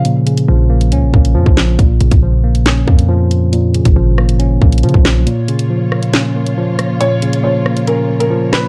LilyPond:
<<
  \new Staff \with { instrumentName = "Grand piano" } { \time 4/4 \key bes \minor \tempo 4 = 138 r1 | r1 | r1 | r1 |
des''4 des''4 bes'8. bes'8. ces''8 | }
  \new Staff \with { instrumentName = "String section" } { \time 4/4 \key bes \minor r1 | r1 | r1 | <bes f' des''>1~ |
<bes f' des''>1 | }
  \new Staff \with { instrumentName = "Tine electric piano" } { \clef bass \time 4/4 \key bes \minor <bes, f bes des'>8 des8 f8 bes8 des'8 bes8 f4 | bes,8 des8 f8 bes8 des'8 bes8 f4 | bes,8 des8 f8 bes8 des'8 bes8 f4 | bes,8 des8 f8 bes8 des'8 bes8 f4 |
bes,8 des8 f8 bes8 des'8 bes8 f4 | }
  \new Staff \with { instrumentName = "808-style bass" } { \clef bass \time 4/4 \key bes \minor des4 bes,,4 des,16 bes,,16 bes,,8 f,16 bes,,8. | bes,,8 bes,,16 bes,,4.~ bes,,16 f,4.~ | f,8. aes,,16 aes,,4. bes,,8 des16 bes,,8 ces,16 | r1 |
r1 | }
  \new DrumStaff \with { instrumentName = "Drums" } \drummode { \time 4/4 hh8 hh16 hh16 r8. hh16 hh8 bd16 hh16 r16 bd16 <hc sn>8 | <hh bd>8 hh16 <hh bd>16 r8. hh16 <hc hh sn>8 bd16 hh16 r8 hh8 | hh8 hh16 <hh bd>16 r8 ss16 hh16 hh8 bd16 hh32 hh32 hh32 hh32 bd16 <hc ss sn>8 | hh8 hh16 hh16 r8 ss16 hh16 <hc hh sn>8. hh16 r8 <hh ss>8 |
hh8 hh16 hh16 r8 ss16 hh16 hh8. hh16 r8 <hc ss sn>8 | }
>>